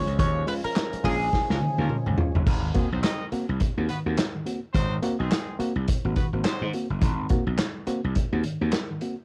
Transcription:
Already playing: F3 G#3 C#4 C#5
0.07 C#2, closed hi-hat
0.18 D#2 D#3 C#5, kick, closed hi-hat
0.47 G#3 C#4 F4 B4, open hi-hat
0.64 C#4 F4 A#4, muted slap bass stroke
0.76 snare, clap, closed hi-hat
0.93 muted slap bass stroke, closed hi-hat
1.04 A#1 F3 G#3 A#3 C#4 F4 G#4 A#4, kick, open hi-hat
1.33 kick, snare
1.50 C#2 F3 G#3 A#3 C#4 F4 A#4, snare
1.61 D#3, high tom
1.78 D#2 F3 G#3 A#3 C#4 F4 A#4, high tom
1.89 C#4 F4, muted slap bass stroke, mid tom
2.06 C#2 D#3, mid tom
2.18 G#3 C#4 F4, floor tom
2.35 F#1, floor tom
2.47 G#1 G#2 D#3, kick, crash
2.74 D#3 G#3 A#3 C4 F#4 G#4, kick, closed hi-hat
2.91 B1 F#3 C4 D#4 C5
3.02 C4 D#4 A#4 D#5, snare, clap, closed hi-hat
3.32 A#3 C4 F#4, muted slap bass stroke, closed hi-hat
3.49 C2
3.60 kick, closed hi-hat
3.77 D#2 A#3 C4 F#4
3.89 G#2 D#3 B3 F#4 B4, closed hi-hat
4.06 D#2 A#3 C4 F#4
4.17 C4 F#4, snare, clap, closed hi-hat
4.35 G#2 D#3
4.46 A#3 C4 F#4, closed hi-hat
4.73 G#1 G#2 D#3 F#3 C4 D#4 C5, kick, closed hi-hat
5.02 A#3 C4 F#4, closed hi-hat
5.18 B1 D#3 G#3 C4 F#4 G#4
5.31 snare, clap, closed hi-hat
5.59 A#3 C4 F#4, muted slap bass stroke, closed hi-hat
5.76 C2
5.88 kick, closed hi-hat
6.05 G#1 A#3 C4 F#4
6.16 G#2 D#3 B3 F#4 B4, kick, closed hi-hat
6.33 G#1 A#3 C4 F#4
6.44 F#3 C4 D#4 C5, snare, clap, closed hi-hat
6.61 G#2 D#3
6.73 A#3 C4 F#4, closed hi-hat
6.90 F#1
7.01 G#1 G#2 D#3, kick, closed hi-hat
7.29 A#3 C4 F#4, kick, closed hi-hat
7.47 B1 C4 F#4
7.58 snare, clap, closed hi-hat
7.87 A#3 C4 F#4, muted slap bass stroke, closed hi-hat
8.04 C2
8.15 kick, closed hi-hat
8.32 D#2 A#3 C4 F#4
8.43 G#2 D#3, closed hi-hat
8.61 D#2 A#3 C4 F#4
8.72 C4 F#4, snare, clap, closed hi-hat
8.90 G#2 D#3
9.01 A#3 C4 F#4, closed hi-hat

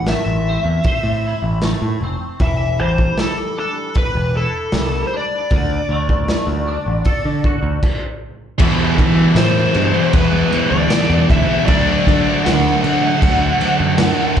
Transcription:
Already playing: A1 A2 E3 C4 E4
0.06 A3 E5, snare, open hi-hat
0.26 A1
0.48 C4
0.65 E2
0.84 C5, kick, open hi-hat
1.03 A2
1.26 E4
1.42 A1
1.61 A3, snare, open hi-hat
1.82 A2
2.01 F1 C4
2.40 E1 E3 E5, kick, open hi-hat
2.79 A1 G3 C5
2.98 kick
3.17 G3 A4, snare, open hi-hat
3.57 D4 A4
3.94 B4, kick, open hi-hat
4.15 E1
4.35 E4 A4
4.72 C2 G3, snare, open hi-hat
5.07 C5
5.13 D4 D5
5.50 D2 D3, kick, open hi-hat
5.89 D2 A3
6.09 kick
6.28 A3, snare, open hi-hat
6.47 D2
6.68 D4
6.86 A1
7.05 A4, kick, open hi-hat
7.25 D3
7.44 F#4, kick
7.63 D2
7.83 kick, crash
8.58 E2 B2 E3 G3 B3 E4, kick, crash
8.98 E3, kick, crash
9.17 G3 B3 E4
9.35 A2 E3 G3 B3 E4 C5, snare, crash
9.55 G3 B3 E4
9.73 G2 E3 G3 B3 E4, muted distorted electric guitar stroke, crash
9.93 G3 B3 E4, muted distorted electric guitar stroke
10.13 E2 B4, kick, crash
10.32 G3 B3 E4
10.52 E3 G3 B3 E4, crash
10.71 D2 D5, muted distorted electric guitar stroke
10.90 E3 G3 B3 E4, snare, crash
11.09 E2 G3 B3 E4
11.28 D2 E3 G3 B3 E4 E5, kick, crash
11.48 G3 B3 E4
11.65 D2 D3 F#3 A3 D4 D5, kick, crash
11.70 F#3
12.07 D3, kick, crash
12.26 F#3 A3 D4
12.44 D2 D3 F#3 A3 D4 F#5, snare, crash
12.63 F#3 A3 D4
12.82 D3 F#3 F#5, muted distorted electric guitar stroke, crash
12.86 A3 D4
13.01 F#3 A3 D4, muted distorted electric guitar stroke
13.22 D2, kick, crash
13.40 F#3 A3 D4
13.58 D3 F#3 A3 D4, crash
13.80 F#2, muted distorted electric guitar stroke
13.98 D3 F#3 A3 D4, snare, crash
14.17 F#3 A3 D4
14.36 D3, crash

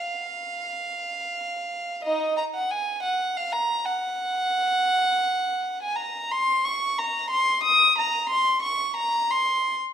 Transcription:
Already playing: F5
2.04 D#4 D#5
2.37 A#5
2.55 F#5
2.71 G#5
3.03 F#5
3.37 F5
3.52 A#5
3.86 F#5
5.83 G#5
5.96 A#5
6.31 C6
6.65 C#6
6.99 A#5
7.30 C6
7.63 D#6
7.98 A#5
8.29 C6
8.62 C#6
8.96 A#5
9.30 C6

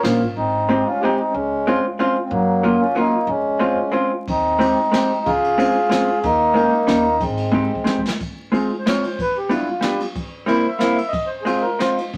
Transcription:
0.03 A#1 F3 A#3 C#4 F4, snare, ride
0.22 G#1
0.36 G#1 C4 D#4
0.69 G#3 C4 D#4 G4
0.86 C#4 F4
1.01 G#3 C4 D#4 G4
1.05 G4
1.17 C4 D#4
1.32 C#2 G#3 C#4
1.67 G#3 C4 C#4 F4
1.99 G#3 C4 C#4 F4
2.23 C4
2.30 F#2 F#3 A#3
2.63 F#3 A#3 C#4 F4
2.80 C#4 F4
2.95 F#3 A#3 C#4 D#4 F4
3.27 F2 G#3 C#4
3.59 G#3 C4 C#4 F4
3.92 G#3 C4 C#4 F4
4.28 D#2 C4 D#4, kick, ride
4.59 G#3 C4 D#4 G4, ride
4.92 G#3 C4 D#4 G4, snare, ride
5.26 C#2 F4 G#4, kick, ride
5.44 ride
5.58 G#3 C4 C#4 F4, ride
5.89 G#3 C4 C#4 F4, snare, ride
6.23 D#2 A#3 D#4, kick, ride
6.54 G#3 A#3 C#4 D#4, ride
6.87 D#2 G3 A#3 C#4 D#4, snare, ride
7.20 G#1 G#3 C4, kick, ride
7.37 ride
7.52 G#3 C4 D#4 G4, kick
7.75 kick
7.84 G#3 C4 D#4 G4, snare
7.98 kick
8.08 snare
8.20 kick, ride
8.52 G#3 C4 D#4 F4 G#4, ride
8.79 C5
8.86 G#3 C4 D#4 F4 C#5, snare, ride
9.04 C5, ride
9.19 B4, kick, ride
9.37 G4
9.49 G3 B3 D4 E4 F4, ride
9.70 F4
9.81 G3 B3 D4 F4 G4, snare, ride
10.00 ride
10.15 kick, ride
10.46 G3 A#3 C4 E4 C5, ride
10.68 E5
10.79 G3 A#3 C4 E4 F5, snare, ride
10.95 E5, ride
11.08 D#5
11.13 kick, ride
11.27 C5
11.42 G#3 G#4
11.46 C4 D#4 F4, ride
11.61 A#4
11.77 G#3 C4 D#4 C5, snare, ride
11.82 F4
11.98 ride
12.13 C#2, kick

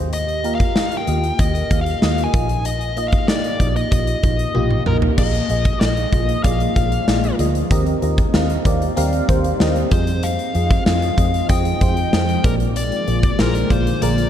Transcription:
Already playing: D#2 D#3 A#3 F4 G4 D#5
0.13 D#5, closed hi-hat
0.29 closed hi-hat
0.44 A#3 F4 G4 A#4, closed hi-hat
0.55 F5
0.60 kick, closed hi-hat
0.75 A#3 F4 G4 D#5, snare
0.92 closed hi-hat
0.97 G5
1.07 D#2 A#3 F4 G4 D#5, closed hi-hat
1.24 closed hi-hat
1.39 D#2 A#3 F4 G4 D#5, kick, closed hi-hat
1.55 closed hi-hat
1.70 D#2 A#3 F4 G4 F5, kick, closed hi-hat
1.81 F5
1.86 closed hi-hat
2.02 D#2 A#3 F4 G4 D#5, snare
2.18 closed hi-hat
2.24 G#5
2.33 A#1 A#2 A#3 D#4 F4 D#5, kick, closed hi-hat
2.49 closed hi-hat
2.65 D#5, closed hi-hat
2.81 closed hi-hat
2.96 A#3 D#4 F4 D#5, closed hi-hat
3.08 F5, closed hi-hat
3.13 kick
3.28 A#3 D#4 F4 G4 D5, snare
3.44 closed hi-hat
3.60 A#1 A#3 D#4 F4 D#5, kick, closed hi-hat
3.76 D#5, closed hi-hat
3.91 A#1 A#3 D#4 F4 D#5, kick, closed hi-hat
4.07 closed hi-hat
4.23 A#1 A#3 D#4 F4 D#5, kick, closed hi-hat
4.39 closed hi-hat
4.54 A#1 A#3 D#4 F4 G4, high tom
4.71 mid tom
4.86 A#1 A#3 D#4 F4 A#4, mid tom
5.02 floor tom
5.18 A#1 A#2 F3 G#3 A#3 D#4 F4 G#4 D#5, kick, crash
5.34 closed hi-hat
5.49 A#1 A#3 F4 G#4 D#5, closed hi-hat
5.65 kick, closed hi-hat
5.80 A#1 A#3 F4 G#4 D#5, snare
5.97 closed hi-hat
6.12 A#1 A#3 F4 G#4 D#5, kick, closed hi-hat
6.29 closed hi-hat
6.44 A#1 A#3 F4 G#4 D5 F5, kick, closed hi-hat
6.60 closed hi-hat
6.75 A#1 A#3 F4 G#4 F5, kick, closed hi-hat
6.92 closed hi-hat
7.07 A#1 A#3 F4 G#4 D5, snare
7.24 closed hi-hat
7.39 D2 A#3 F4 G#4 D#5, closed hi-hat
7.55 closed hi-hat
7.71 D#2 D#3 G3 C4 G4 A#4 D#5, kick, closed hi-hat
7.86 closed hi-hat
8.02 D#2 C4 G4 A#4 D#5, closed hi-hat
8.18 kick, closed hi-hat
8.33 D#2 C4 G4 A#4 F5, snare
8.50 closed hi-hat
8.65 D#2 C4 G4 A#4 D5, kick, closed hi-hat
8.82 closed hi-hat
8.96 D#2 C4 G4 A#4 F5, closed hi-hat
9.13 closed hi-hat
9.28 D#2 C4 G4 A#4 C5, kick, closed hi-hat
9.44 closed hi-hat
9.60 D#2 C4 G4 A#4 D#5, snare
9.76 closed hi-hat
9.91 F2 F3 G#3 C4 F4 G#4 C5 D#5, kick, closed hi-hat
10.07 closed hi-hat
10.23 F5, closed hi-hat
10.39 closed hi-hat
10.54 F2 C4 F4 G#4 D#5, closed hi-hat
10.70 kick, closed hi-hat
10.86 F2 C4 F4 G#4 D#5 F5, snare
11.02 closed hi-hat
11.17 F2 C4 F4 G#4 D#5, kick, closed hi-hat
11.34 closed hi-hat
11.49 F2 C4 F4 G#4 D#5 G5, kick, closed hi-hat
11.65 closed hi-hat
11.81 F2 C4 F4 G#4 C5, kick, closed hi-hat
11.97 closed hi-hat
12.12 F2 C4 F4 G#4 D#5, snare
12.29 closed hi-hat
12.44 A#1 A#2 D3 A#3 F4 G#4 A#4 D5, kick, closed hi-hat
12.60 closed hi-hat
12.76 D5, closed hi-hat
12.92 closed hi-hat
13.07 A#1 A#3 F4 G#4 D5, closed hi-hat
13.23 kick, closed hi-hat
13.39 A#1 A#3 F4 G#4 A#4 C5, snare
13.55 closed hi-hat
13.70 A#1 A#3 F4 G#4 C5 D5, kick, closed hi-hat
13.87 closed hi-hat
14.02 A#1 A#3 F4 G#4 A#4 D5, closed hi-hat
14.18 closed hi-hat

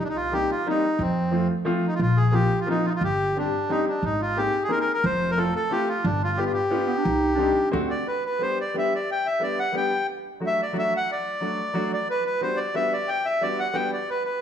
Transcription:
0.00 C2
0.04 D4
0.09 D#4
0.16 F4
0.32 G3 A#3 C4 D#4 G4
0.51 F4
0.67 G3 A#3 C4 D#4
0.99 F2 C4
1.31 F3 A3 C4 F4
1.65 F3 A3 C4 F4
1.87 D#4
1.95 F4
2.00 A#1 F4
2.17 G#4
2.32 F3 A#3 C4 F4 G4
2.60 F4
2.67 F3 A#3 C4 D#4 F4
2.86 D#4 F4
2.95 F4
3.01 G1 G4
3.36 G3 C4 D4 G4
3.69 G3 C4 D4 D#4 G4
3.88 D4
4.03 G#1 D#4
4.21 F4
4.36 A#3 C4 D#4 G4 G#4
4.63 G#4
4.68 A#3 C4 D#4 G#4 A#4
4.80 A#4
4.94 A#4
5.04 F1 C5
5.31 A#4
5.37 A3 C4 F4 A4
5.56 A4
5.70 A3 C4 F4 G4 A4
5.88 F4
6.04 G1 D4
6.24 F4
6.37 B3 D4 F4 G4
6.45 F4
6.53 G4
6.71 B3 D4 F4 G4
6.87 B3
6.97 D4
7.04 C2 D#4
7.34 G3 C4 D4
7.39 D#4 G4
7.70 D2 A3 C4 D4 F#4
7.90 D5
8.07 B4
8.26 B4
8.39 G3 B3 D4 G4 C5
8.61 D5
8.74 G3 B3 D4 G4
8.78 E5
8.95 D5
9.12 G5
9.26 E5
9.39 G3 B3 D4 G4 D5
9.59 F#5
9.72 G3 B3 D4 G4
9.77 G5
10.40 F#3 A3 D4 F#4
10.47 E5
10.62 D5
10.73 F#3 A3 D4 F#4
10.79 E5
10.97 F#5
11.12 D5
11.41 F#3 A3 D4 F#4
11.74 F#3 A3 D4 F#4
11.94 D5
12.10 B4
12.26 B4
12.41 G3 B3 D4 F#4 C5
12.57 D5
12.74 G3 B3 D4 F#4 E5
12.93 D5
13.08 G5
13.25 E5
13.41 G3 B3 D4 F#4 D5
13.60 F#5
13.74 G3 B3 D4 F#4 G5
13.93 D5
14.10 B4
14.25 B4

